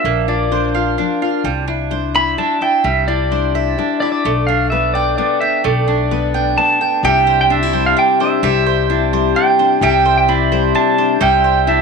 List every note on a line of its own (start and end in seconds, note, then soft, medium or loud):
0.00 0.28 D4 medium
0.00 0.51 D4 medium
0.00 0.51 C5 medium
0.00 0.26 E5 medium
0.04 0.94 A#1 medium
0.04 0.47 A#2 medium
0.04 1.44 A#3 medium
0.28 0.98 D4 medium
0.28 0.75 F4 medium
0.28 0.72 D5 medium
0.51 0.94 F3 medium
0.51 0.99 D4 medium
0.51 1.71 C5 medium
0.75 1.21 F4 medium
0.75 1.21 F5 medium
0.98 1.40 F3 medium
0.98 1.68 D4 medium
0.98 1.47 D4 medium
1.22 1.43 F4 soft
1.22 1.50 F5 medium
1.44 2.34 C2 medium
1.44 1.87 C3 medium
1.44 1.67 G3 medium
1.68 2.38 D4 medium
1.68 2.15 E4 medium
1.91 2.33 G3 medium
1.91 2.38 D4 medium
1.91 3.31 C5 medium
2.15 2.60 E4 medium
2.15 2.60 E5 medium
2.15 2.38 B5 medium
2.38 2.80 G3 medium
2.38 3.08 D4 medium
2.38 2.87 D4 soft
2.38 2.62 A5 medium
2.61 2.82 E4 soft
2.61 3.54 E5 medium
2.61 2.86 G5 medium
2.84 3.74 C2 medium
2.84 3.26 C3 medium
2.84 4.25 G3 medium
2.84 3.09 E5 medium
3.08 3.78 D4 medium
3.08 3.53 E4 medium
3.08 3.99 D5 medium
3.31 3.73 G3 medium
3.31 3.78 D4 medium
3.31 4.30 C5 medium
3.55 4.01 E4 medium
3.55 4.01 E5 medium
3.78 4.20 G3 medium
3.78 4.48 D4 medium
3.78 4.49 D4 medium
4.00 4.22 E4 soft
4.00 4.11 D5 medium
4.00 4.30 E5 medium
4.12 4.45 D5 medium
4.25 5.14 B1 medium
4.25 4.67 B2 medium
4.25 5.63 A3 medium
4.47 5.18 D4 medium
4.47 4.96 D4 medium
4.47 4.70 F5 medium
4.70 5.14 G3 medium
4.70 5.18 B3 medium
4.70 6.10 B4 medium
4.70 4.95 E5 medium
4.94 5.42 D4 medium
4.94 5.16 D5 medium
4.94 5.41 G5 medium
5.18 5.60 G3 medium
5.18 5.62 B3 medium
5.18 5.86 D4 medium
5.18 5.42 D5 medium
5.41 5.87 D4 soft
5.41 5.63 E5 medium
5.41 6.33 G5 medium
5.64 6.54 B1 medium
5.64 6.07 B2 medium
5.64 7.04 A3 medium
5.64 6.77 D5 medium
5.88 6.57 D4 medium
5.88 6.34 D4 medium
6.11 6.53 G3 medium
6.11 6.56 B3 medium
6.11 7.09 B4 medium
6.34 6.81 D4 medium
6.34 6.80 G5 medium
6.57 6.99 G3 medium
6.57 7.01 B3 medium
6.57 7.09 D4 medium
6.57 7.04 A5 medium
6.81 7.49 D4 soft
6.81 7.05 G5 medium
7.03 7.92 C2 loud
7.03 8.43 C3 medium
7.03 8.42 G3 medium
7.03 8.44 G4 medium
7.03 8.43 E5 medium
7.03 7.40 G5 loud
7.27 7.73 C5 medium
7.41 7.52 G5 medium
7.50 7.95 D4 medium
7.50 7.63 D4 medium
7.50 7.86 E5 medium
7.63 8.44 E4 medium
7.73 9.12 G3 medium
7.73 8.20 C5 medium
7.86 7.98 F5 medium
7.97 8.88 D4 medium
7.97 8.21 G5 medium
8.20 8.47 D4 medium
8.20 8.66 C5 medium
8.20 8.64 E5 medium
8.43 9.32 C2 loud
8.43 9.81 C3 medium
8.43 9.81 G3 medium
8.43 9.82 G4 medium
8.43 9.82 E5 medium
8.66 9.13 C5 medium
8.90 9.35 D4 medium
8.90 10.28 E4 medium
9.13 10.52 G3 medium
9.13 9.59 C5 medium
9.36 10.27 D4 medium
9.36 9.79 G5 medium
9.59 9.85 D4 medium
9.59 10.05 C5 medium
9.81 10.71 C2 loud
9.81 11.20 C3 medium
9.81 11.19 G3 medium
9.81 11.20 G4 medium
9.81 11.20 E5 medium
9.81 10.16 G5 medium
10.05 10.51 C5 medium
10.18 10.29 G5 medium
10.29 10.74 D4 medium
10.29 11.19 E4 medium
10.29 10.75 B5 loud
10.52 11.19 G3 medium
10.52 10.98 C5 medium
10.75 11.66 D4 medium
10.75 11.23 A5 loud
10.98 11.19 D4 medium
10.98 11.44 C5 medium
11.20 11.82 C2 loud
11.20 11.82 C3 medium
11.20 11.82 G3 medium
11.20 11.82 G4 medium
11.20 11.82 E5 medium
11.20 11.65 G5 loud
11.44 11.82 C5 medium
11.67 11.82 D4 medium
11.67 11.82 E4 medium
11.67 11.82 E5 medium